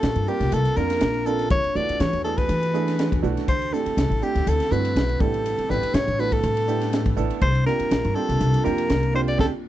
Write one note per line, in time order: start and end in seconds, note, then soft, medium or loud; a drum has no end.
0.00 0.15 A#1 medium
0.00 1.49 C3 medium
0.00 0.24 A#3 medium
0.00 1.49 A#3 medium
0.00 0.24 C4 medium
0.00 0.25 D4 medium
0.00 1.49 D4 medium
0.00 0.25 F4 medium
0.00 1.49 F4 medium
0.00 0.24 G4 medium
0.00 0.30 A4 medium
0.00 snare loud
0.00 hi-hat pedal medium
0.00 ride medium
0.16 0.26 G2 medium
0.16 ride medium
0.28 0.74 A#3 medium
0.28 0.74 C4 medium
0.28 0.74 D4 soft
0.28 0.74 F4 medium
0.28 0.55 G4 medium
0.28 0.74 A#4 medium
0.28 hi-hat pedal medium
0.40 0.51 C2 medium
0.40 snare soft
0.40 ride medium
0.52 0.64 C2 medium
0.52 0.79 A4 medium
0.52 hi-hat pedal medium
0.52 ride medium
0.65 ride medium
0.76 0.99 F2 medium
0.76 1.23 A#3 medium
0.76 1.23 C4 medium
0.76 1.23 D4 medium
0.76 1.23 F4 medium
0.76 1.28 A#4 medium
0.76 1.23 A#4 medium
0.76 hi-hat pedal medium
0.90 snare soft
0.90 ride medium
1.01 1.47 A#1 medium
1.01 snare medium
1.01 hi-hat pedal medium
1.01 ride medium
1.14 ride medium
1.26 1.51 A#3 medium
1.26 1.51 C4 medium
1.26 1.51 D4 medium
1.26 1.51 F4 medium
1.26 1.51 A4 medium
1.26 1.51 A#4 medium
1.26 hi-hat pedal medium
1.39 snare soft
1.39 ride medium
1.50 1.63 E2 loud
1.50 3.47 E3 medium
1.50 3.47 D4 medium
1.50 3.47 F#4 medium
1.50 1.78 C#5 loud
1.50 kick loud
1.50 hi-hat pedal medium
1.50 ride medium
1.64 muted upright bass stroke soft
1.64 ride medium
1.75 1.88 E2 medium
1.75 2.21 A3 medium
1.75 2.21 B3 medium
1.75 2.21 D4 medium
1.75 2.21 E4 medium
1.75 2.21 F#4 medium
1.75 2.02 D5 loud
1.75 hi-hat pedal medium
1.89 muted upright bass stroke soft
1.89 ride medium
2.00 2.12 E3 medium
2.00 2.24 C#5 medium
2.00 snare loud
2.00 hi-hat pedal medium
2.00 ride medium
2.13 2.46 E2 medium
2.13 ride medium
2.24 2.71 A3 medium
2.24 2.71 B3 medium
2.24 2.71 D4 medium
2.24 2.71 E4 medium
2.24 2.71 G#4 medium
2.24 2.39 A4 medium
2.24 hi-hat pedal medium
2.38 3.23 B4 medium
2.38 kick medium
2.38 snare soft
2.38 ride medium
2.49 3.08 E3 medium
2.49 hi-hat pedal medium
2.49 ride medium
2.63 ride medium
2.74 3.20 A3 medium
2.74 3.20 B3 medium
2.74 3.20 D4 medium
2.74 3.20 E4 medium
2.74 3.20 G#4 medium
2.74 hi-hat pedal medium
2.88 snare soft
2.88 ride medium
2.99 snare medium
2.99 hi-hat pedal medium
2.99 ride medium
3.12 3.22 E2 medium
3.12 kick medium
3.12 ride medium
3.22 3.35 B1 medium
3.22 3.48 A3 medium
3.22 3.48 B3 medium
3.22 3.48 D4 medium
3.22 3.48 E4 medium
3.22 3.48 F#4 medium
3.22 hi-hat pedal medium
3.37 snare soft
3.37 ride medium
3.47 3.70 D2 medium
3.47 5.18 D3 medium
3.47 5.18 G3 medium
3.47 5.18 C4 medium
3.47 5.18 E4 medium
3.47 3.75 C5 medium
3.47 kick medium
3.47 hi-hat pedal medium
3.47 ride medium
3.62 ride medium
3.72 4.19 A3 medium
3.72 4.19 C4 medium
3.72 4.19 D4 medium
3.72 4.19 E4 medium
3.72 4.19 G4 medium
3.72 4.25 A4 medium
3.72 snare soft
3.72 hi-hat pedal medium
3.86 muted upright bass stroke soft
3.86 ride medium
3.97 4.09 C2 medium
3.97 snare loud
3.97 hi-hat pedal medium
3.97 ride medium
4.10 4.21 A1 medium
4.10 ride medium
4.22 4.68 A3 medium
4.22 4.68 C4 medium
4.22 4.68 D4 medium
4.22 4.68 E4 medium
4.22 4.68 G4 medium
4.22 4.50 G4 medium
4.22 hi-hat pedal medium
4.35 4.46 D2 medium
4.35 snare soft
4.35 ride medium
4.47 4.59 D2 medium
4.47 4.74 A4 medium
4.47 hi-hat pedal medium
4.47 ride medium
4.60 snare soft
4.60 ride medium
4.71 4.94 G2 medium
4.71 5.17 A3 medium
4.71 5.17 C4 medium
4.71 5.17 D4 medium
4.71 5.17 E4 medium
4.71 5.17 F#4 medium
4.71 5.23 B4 medium
4.71 hi-hat pedal medium
4.85 ride medium
4.96 5.18 B1 medium
4.96 snare loud
4.96 hi-hat pedal medium
4.96 ride medium
5.09 ride medium
5.20 5.55 A1 medium
5.20 7.40 G3 medium
5.20 7.39 A3 medium
5.20 5.66 A3 medium
5.20 5.66 B3 medium
5.20 7.40 D4 medium
5.20 5.66 D4 medium
5.20 5.66 E4 medium
5.20 5.66 G4 medium
5.20 5.72 A4 medium
5.20 kick loud
5.20 hi-hat pedal medium
5.34 ride medium
5.46 hi-hat pedal medium
5.46 ride medium
5.58 muted upright bass stroke soft
5.58 ride soft
5.69 5.82 A1 medium
5.69 6.15 A3 medium
5.69 6.15 B3 medium
5.69 6.15 D4 medium
5.69 6.15 E4 medium
5.69 6.15 G4 medium
5.69 5.96 B4 medium
5.69 snare soft
5.69 hi-hat pedal medium
5.83 muted upright bass stroke soft
5.83 ride medium
5.94 6.06 A2 medium
5.94 6.22 C#5 medium
5.94 snare loud
5.94 hi-hat pedal medium
5.94 ride medium
6.08 6.40 A1 medium
6.08 ride medium
6.19 6.65 A3 medium
6.19 6.65 B3 medium
6.19 6.65 D4 medium
6.19 6.65 E4 medium
6.19 6.65 F#4 medium
6.19 6.35 B4 medium
6.19 hi-hat pedal medium
6.32 7.18 A4 medium
6.32 kick medium
6.32 ride medium
6.43 7.02 A2 loud
6.43 hi-hat pedal medium
6.43 ride medium
6.57 ride medium
6.67 7.14 A3 medium
6.67 7.14 B3 medium
6.67 7.14 D4 medium
6.67 7.14 E4 medium
6.67 7.14 G4 medium
6.67 hi-hat pedal medium
6.81 snare soft
6.81 ride medium
6.93 snare medium
6.93 hi-hat pedal medium
6.93 ride medium
7.06 7.16 A1 medium
7.06 kick medium
7.06 ride medium
7.16 7.29 A1 medium
7.16 7.42 A3 medium
7.16 7.42 B3 medium
7.16 7.42 D4 medium
7.16 7.42 E4 medium
7.16 7.42 A4 medium
7.16 hi-hat pedal medium
7.30 ride medium
7.41 7.64 C2 medium
7.41 9.37 C3 medium
7.41 9.37 A#3 medium
7.41 9.37 D4 medium
7.41 9.37 F4 medium
7.41 7.65 C5 medium
7.41 kick loud
7.41 hi-hat pedal medium
7.41 ride medium
7.55 ride medium
7.66 8.12 A#3 medium
7.66 8.12 C4 medium
7.66 8.12 D4 medium
7.66 8.13 F4 medium
7.66 8.13 G4 medium
7.66 8.17 A#4 medium
7.66 snare soft
7.66 hi-hat pedal medium
7.80 muted upright bass stroke soft
7.80 ride medium
7.91 8.03 A#1 medium
7.91 snare loud
7.91 hi-hat pedal medium
7.91 ride medium
8.04 8.15 G2 medium
8.04 ride medium
8.15 8.62 A#3 medium
8.15 8.62 C4 medium
8.15 8.62 D4 medium
8.15 8.62 F4 medium
8.15 8.62 G4 medium
8.15 8.66 A4 medium
8.15 hi-hat pedal medium
8.29 8.39 C2 medium
8.29 snare soft
8.29 ride medium
8.41 8.53 C2 medium
8.41 hi-hat pedal medium
8.41 ride medium
8.54 ride medium
8.64 8.88 F2 medium
8.64 9.11 A#3 medium
8.64 9.11 C4 medium
8.64 9.11 D4 medium
8.64 9.11 F4 medium
8.64 9.11 G4 medium
8.64 9.14 A#4 medium
8.64 hi-hat pedal medium
8.78 ride medium
8.89 9.35 C2 medium
8.89 snare loud
8.89 hi-hat pedal medium
8.89 ride medium
9.03 ride medium
9.14 9.39 A#3 medium
9.14 9.37 C4 medium
9.14 9.37 D4 medium
9.14 9.39 F4 medium
9.14 9.37 G4 medium
9.14 9.21 C5 medium
9.14 hi-hat pedal medium
9.28 9.39 D5 medium
9.28 snare soft
9.28 ride medium
9.38 9.49 D2 medium
9.38 9.68 D3 medium
9.38 9.47 C4 medium
9.38 9.68 C4 medium
9.38 9.47 D4 medium
9.38 9.68 E4 medium
9.38 9.47 G4 medium
9.38 9.68 G4 medium
9.38 9.47 A4 medium
9.38 kick medium
9.38 snare medium